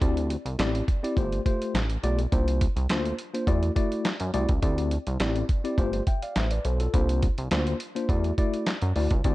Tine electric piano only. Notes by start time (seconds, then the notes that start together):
0.01 C4 E4 G4 D5
0.59 C4 E4 G4 D5
1.03 C4 E4 G4 D5
1.17 A3 F4 G4 C5
1.45 A3 F4 G4 C5
2.03 A3 F4 G4 D5
2.32 A#3 D4 F4 C5
2.89 A#3 D4 F4 C5
3.34 A#3 D4 F4 C5
3.47 A3 E4 F#4 D5
3.76 A3 E4 F#4 D5
4.33 A3 E4 F#4 D5
4.62 C4 E4 G4 D5
5.20 C4 E4 G4 D5
5.64 C4 E4 G4 D5
5.78 A3 F4 G4 C5
6.07 E5 G5
6.23 D5 F5
6.36 C5 E5
6.51 B4 D5
6.65 A4 C5
6.80 F4 A4
6.94 A#3 D4 F4 C5
7.51 A#3 D4 F4 C5
7.95 A#3 D4 F4 C5
8.09 A3 E4 F#4 D5
8.38 A3 E4 F#4 D5
8.95 A3 E4 F#4 D5
9.24 C4 E4 G4 D5